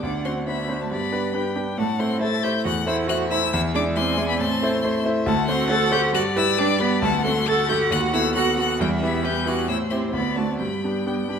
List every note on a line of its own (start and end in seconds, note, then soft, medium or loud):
0.03 0.24 D2 medium
0.03 0.27 D4 medium
0.03 0.46 F#5 medium
0.03 0.12 D6 medium
0.25 0.47 C4 medium
0.25 0.45 D4 soft
0.25 0.45 F#4 soft
0.25 0.45 C5 medium
0.25 0.33 C6 medium
0.47 0.80 B3 medium
0.47 0.67 D4 medium
0.47 0.67 F#4 medium
0.47 0.68 C5 medium
0.47 0.90 E5 medium
0.47 0.82 B5 medium
0.69 0.89 D4 medium
0.69 0.89 F#4 soft
0.69 0.89 C5 medium
0.81 0.91 A3 medium
0.81 0.91 A5 medium
0.90 1.12 G2 medium
0.90 1.56 B3 medium
0.90 1.33 D5 medium
0.90 1.56 B5 loud
1.12 1.32 D4 medium
1.12 1.32 G4 medium
1.12 1.32 B4 medium
1.34 1.54 D4 medium
1.34 1.54 G4 soft
1.34 1.54 B4 soft
1.34 1.79 G5 medium
1.56 1.76 D4 medium
1.56 1.76 G4 medium
1.56 1.77 B4 medium
1.78 1.99 A2 medium
1.78 1.86 A3 medium
1.78 2.21 F#5 medium
1.78 2.01 A5 loud
1.99 2.19 A3 medium
1.99 2.22 C4 medium
1.99 2.19 E4 medium
1.99 2.19 C5 medium
1.99 2.21 C6 loud
2.20 2.41 A3 medium
2.20 2.41 E4 medium
2.20 2.42 A4 medium
2.20 2.41 C5 medium
2.20 2.65 E5 medium
2.20 2.44 A6 loud
2.43 2.64 A3 medium
2.43 2.64 E4 medium
2.43 2.51 G4 medium
2.43 2.64 C5 medium
2.43 2.66 G6 loud
2.64 2.87 E2 medium
2.64 2.72 F#4 loud
2.64 3.12 F#5 medium
2.64 2.87 F#6 loud
2.86 3.07 A3 medium
2.86 3.09 E4 loud
2.86 3.07 E4 medium
2.86 3.07 C5 medium
2.86 2.96 E6 loud
3.07 3.29 A3 medium
3.07 3.29 E4 medium
3.07 3.29 F#4 loud
3.07 3.29 C5 medium
3.07 3.98 E5 medium
3.07 3.17 F#6 loud
3.30 3.51 A3 medium
3.30 3.52 E4 loud
3.30 3.51 E4 medium
3.30 3.51 C5 medium
3.30 3.52 E6 loud
3.52 3.75 E2 medium
3.52 3.60 E4 loud
3.52 3.60 E6 loud
3.74 3.95 G#3 medium
3.74 3.82 D4 loud
3.74 3.95 E4 medium
3.74 3.95 D5 medium
3.74 3.83 D6 loud
3.96 4.16 G#3 medium
3.96 4.28 C4 loud
3.96 4.16 E4 medium
3.96 4.17 D5 medium
3.96 4.41 G#5 medium
3.96 4.28 C6 loud
4.18 4.38 G#3 medium
4.18 4.38 E4 medium
4.18 4.38 D5 medium
4.29 4.38 B3 medium
4.29 4.39 B5 loud
4.38 4.61 A2 medium
4.38 5.03 C4 loud
4.38 4.83 A5 medium
4.38 5.04 C6 loud
4.62 4.82 A3 medium
4.62 4.82 E4 medium
4.62 4.83 C5 medium
4.84 5.04 A3 medium
4.84 5.04 E4 medium
4.84 5.04 C5 medium
4.84 5.30 E5 medium
5.05 5.25 A3 medium
5.05 5.25 E4 medium
5.05 5.26 C5 medium
5.25 5.48 D2 loud
5.25 5.47 A3 loud
5.25 6.15 F#5 loud
5.25 5.47 A5 loud
5.47 5.68 A3 medium
5.47 5.72 C4 loud
5.47 5.69 F#4 medium
5.47 5.69 C5 medium
5.47 5.69 C6 loud
5.70 5.90 A3 medium
5.70 5.90 F#4 medium
5.70 5.94 A4 loud
5.70 5.90 C5 medium
5.70 5.92 A6 loud
5.91 6.12 A3 medium
5.91 6.12 F#4 medium
5.91 6.13 G4 loud
5.91 6.12 C5 medium
5.91 6.00 G6 loud
6.13 6.35 G2 medium
6.13 6.22 F#4 loud
6.13 7.06 D5 loud
6.13 6.22 F#6 loud
6.36 6.56 G3 medium
6.36 6.44 E4 loud
6.36 6.57 G4 medium
6.36 6.57 B4 medium
6.36 6.59 E6 loud
6.58 6.78 G3 medium
6.58 6.81 D4 loud
6.58 6.78 G4 medium
6.58 6.79 B4 medium
6.58 6.82 D6 loud
6.80 7.00 G3 medium
6.80 7.02 B3 loud
6.80 7.00 G4 medium
6.80 7.01 B4 medium
6.80 7.01 B5 loud
7.02 7.24 D2 medium
7.02 7.11 A3 loud
7.02 7.48 F#5 loud
7.02 7.24 A5 loud
7.24 7.44 A3 medium
7.24 7.33 C4 medium
7.24 7.45 F#4 medium
7.24 7.45 A4 medium
7.24 7.49 C6 loud
7.47 7.67 A3 medium
7.47 7.67 F#4 medium
7.47 7.68 A4 medium
7.47 7.68 A4 loud
7.47 8.35 F#5 loud
7.47 7.69 A6 loud
7.69 7.89 A3 medium
7.69 7.90 F#4 medium
7.69 7.93 G4 loud
7.69 7.89 A4 medium
7.69 7.77 G6 loud
7.90 8.12 D#2 medium
7.90 8.13 F#4 loud
7.90 8.00 F#6 loud
8.13 8.34 B3 medium
8.13 8.21 E4 loud
8.13 8.34 F#4 medium
8.13 8.34 A4 medium
8.13 8.34 E6 loud
8.34 8.56 B3 medium
8.34 8.57 F#4 loud
8.34 8.56 F#4 medium
8.34 8.56 A4 medium
8.34 8.79 F#5 medium
8.34 8.57 F#6 loud
8.58 8.78 B3 medium
8.58 8.82 F#4 loud
8.58 8.78 F#4 medium
8.58 8.78 A4 medium
8.58 8.80 F#6 loud
8.80 9.02 E2 medium
8.80 9.04 G3 loud
8.80 9.26 E5 loud
8.80 8.88 G5 loud
9.02 9.22 B3 medium
9.02 9.26 B3 loud
9.02 9.23 E4 medium
9.02 9.23 G4 medium
9.02 9.26 B5 loud
9.24 9.44 B3 medium
9.24 9.44 E4 medium
9.24 9.46 G4 loud
9.24 9.45 G4 medium
9.24 9.71 B4 medium
9.24 9.48 G6 loud
9.46 9.66 B3 medium
9.46 9.67 E4 medium
9.46 9.69 F#4 medium
9.46 9.67 G4 medium
9.46 9.68 F#6 loud
9.68 9.90 A2 medium
9.68 9.77 E4 medium
9.68 10.14 C5 medium
9.68 9.77 E6 loud
9.90 10.12 C4 medium
9.90 10.14 C4 medium
9.90 10.12 E4 medium
9.90 10.12 G4 medium
9.90 9.98 C6 loud
10.12 10.36 D2 medium
10.12 10.40 B3 medium
10.12 10.60 D5 medium
10.12 10.37 B5 medium
10.35 10.60 A3 medium
10.35 10.57 C4 soft
10.35 10.58 D4 soft
10.35 10.58 F#4 medium
10.35 10.58 A5 medium
10.58 10.82 G2 medium
10.58 11.39 G3 medium
10.58 11.39 G5 medium
10.58 11.01 B5 medium
10.84 11.04 B3 soft
10.84 11.05 D4 soft
10.84 11.05 G4 soft
11.06 11.27 B3 soft
11.06 11.27 D4 soft
11.06 11.28 G4 medium
11.06 11.15 G5 medium
11.29 11.39 B3 soft
11.29 11.39 D4 soft
11.29 11.39 G4 medium
11.29 11.39 B5 medium